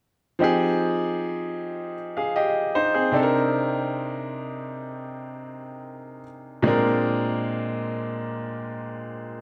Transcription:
0.39 3.09 F3 medium
0.39 1.94 C4 medium
0.39 1.94 D#4 medium
0.39 1.95 G4 medium
0.44 1.95 G#4 medium
2.17 2.36 G#4 soft
2.17 2.35 F5 medium
2.36 2.73 G4 medium
2.36 2.73 D#5 medium
2.75 2.94 D#4 medium
2.75 2.94 C5 medium
2.94 3.11 C4 soft
2.94 3.32 G#4 medium
3.12 6.21 C3 medium
3.12 6.21 C4 medium
3.12 6.22 D4 medium
3.12 6.22 D#4 medium
3.16 3.22 A4 medium
3.23 6.26 A#4 medium
6.63 9.41 A#2 medium
6.63 9.41 G#3 medium
6.63 9.41 C4 medium
6.63 9.41 D4 medium
6.67 9.41 A#4 medium

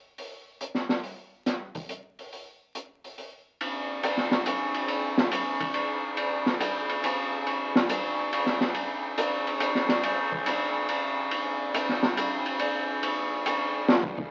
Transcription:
0.18 open hi-hat soft
0.61 closed hi-hat soft
0.75 snare soft
0.89 snare soft
1.03 open hi-hat soft
1.46 snare soft
1.46 closed hi-hat medium
1.75 kick soft
1.75 open hi-hat soft
1.89 closed hi-hat soft
2.19 open hi-hat soft
2.33 open hi-hat soft
2.75 closed hi-hat soft
3.04 open hi-hat soft
3.18 open hi-hat soft
3.61 ride medium
4.03 hi-hat pedal medium
4.03 ride medium
4.17 snare soft
4.31 snare soft
4.46 hi-hat pedal medium
4.46 ride medium
4.74 ride soft
4.88 ride medium
5.18 snare medium
5.31 hi-hat pedal medium
5.31 ride medium
5.60 kick soft
5.60 ride soft
5.74 ride medium
6.17 ride medium
6.46 snare soft
6.60 hi-hat pedal medium
6.60 ride medium
6.89 ride soft
7.04 hi-hat pedal medium
7.04 ride medium
7.46 ride medium
7.76 snare medium
7.89 hi-hat pedal medium
7.89 ride medium
8.33 ride medium
8.46 snare soft
8.61 snare soft
8.74 ride medium
9.18 hi-hat pedal medium
9.18 ride medium
9.47 ride soft
9.60 hi-hat pedal medium
9.60 ride medium
9.75 snare soft
9.89 snare soft
9.89 ride soft
10.03 ride medium
10.32 kick medium
10.46 hi-hat pedal medium
10.46 ride medium
10.89 ride medium
11.31 ride medium
11.74 hi-hat pedal medium
11.74 ride medium
11.89 snare soft
12.03 snare soft
12.17 hi-hat pedal medium
12.17 ride medium
12.46 ride soft
12.59 ride medium
13.03 ride medium
13.46 hi-hat pedal medium
13.46 ride medium
13.89 snare medium
14.03 kick medium
14.18 kick medium

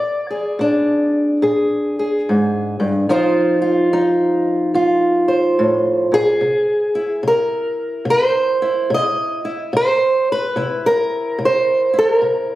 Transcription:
0.00 0.52 A#2 medium
0.00 3.09 D5 medium
0.30 1.42 G#4 soft
0.59 1.36 A#2 medium
0.59 3.06 D4 soft
1.42 2.20 A#2 medium
1.42 1.96 G#4 soft
1.99 3.07 G#4 soft
2.29 2.79 G#2 medium
2.80 3.09 G2 medium
3.09 3.87 F2 medium
3.09 6.43 F3 soft
3.09 3.92 D#4 soft
3.09 3.60 F4 soft
3.09 5.28 C5 soft
3.62 4.74 F4 soft
3.93 4.70 F2 medium
3.93 6.39 D#4 soft
4.74 5.52 F2 medium
4.74 6.12 F4 soft
5.28 7.31 C5 soft
5.59 6.11 A2 medium
6.12 6.42 A#2 medium
6.12 7.26 G#4 medium
6.41 7.19 C3 medium
6.95 8.61 E4 soft
7.23 8.02 C3 medium
7.28 8.93 A#4 medium
8.05 8.84 C3 medium
8.10 8.93 C5 medium
8.62 9.44 E4 soft
8.90 9.68 C3 medium
8.94 9.76 D#5 medium
9.45 9.71 E4 soft
9.73 10.51 C3 medium
9.73 10.31 C5 loud
10.32 10.87 B4 medium
10.56 11.35 C3 medium
10.56 11.92 E4 medium
10.86 11.97 A#4 medium
11.38 12.17 C3 medium
11.45 12.55 C5 medium
11.94 12.55 E4 soft
11.99 12.12 A4 medium
12.12 12.55 A#4 medium
12.22 12.55 C3 medium

